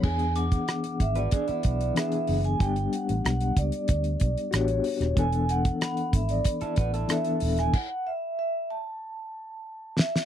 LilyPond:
<<
  \new Staff \with { instrumentName = "Glockenspiel" } { \time 4/4 \key e \mixolydian \tempo 4 = 94 r8 d'''2.~ d'''8 | r1 | r4 b''2.~ | b''8 r2. r8 | }
  \new Staff \with { instrumentName = "Vibraphone" } { \time 4/4 \key e \mixolydian gis''8 fis''4 e''16 d''4~ d''16 e''8. gis''16 | g''8 fis''8 fis''8 d''4. cis''4 | gis''8 fis''4 e''16 d''4~ d''16 e''8. gis''16 | fis''8 e''8 e''8 a''2 e''8 | }
  \new Staff \with { instrumentName = "Clean electric guitar" } { \time 4/4 \key e \mixolydian r4. r16 <fis' b'>16 <d' gis'>16 <b e'>4. r16 | r1 | r2 r16 <e' a'>16 <fis' b'>16 <e' a'>4~ <e' a'>16~ | <e' a'>16 r2. r8. | }
  \new Staff \with { instrumentName = "Reed electric piano" } { \time 4/4 \key e \mixolydian <e b d' gis'>4 r2 <e b d' gis'>8 r8 | <g b d' g'>4 r2 <b d' fis' g'>8 r8 | <e b d' a'>4 r2 <e b d' a'>8 r8 | r1 | }
  \new Staff \with { instrumentName = "Fingered electric bass" } { \clef bass \time 4/4 \key e \mixolydian e,4 r8 gis,,8 r8 b,,8 r8 fis,,8 | g,,8 r16 a,,16 b,,8 cis,16 r16 d,8 b,,16 r16 a,,8 r16 dis,,16 | e,,4 r8 gis,,8 r8 a,,8 r8 dis,,8 | r1 | }
  \new DrumStaff \with { instrumentName = "Drums" } \drummode { \time 4/4 <cymc bd>16 hh16 hh16 <hh bd>16 <hh ss>16 hh16 <hh bd>16 hh16 <hh bd>16 hh16 <hh bd>16 hh16 <hh ss>16 hh16 hho16 hh16 | <hh bd>16 hh16 hh16 hh16 <hh ss>16 hh16 <hh bd>16 hh16 <hh bd>16 hh16 <hh bd>16 hh16 <hh ss>16 hh16 hho16 <hh ss>16 | <hh bd>16 hh16 hh16 <hh bd>16 <hh ss>16 hh16 <hh bd>16 hh16 <hh bd>16 hh16 <hh bd>16 hh16 <hh ss>16 hh16 hho16 <hh ss>16 | <cymc bd>4 r4 r4 r8 sn16 sn16 | }
>>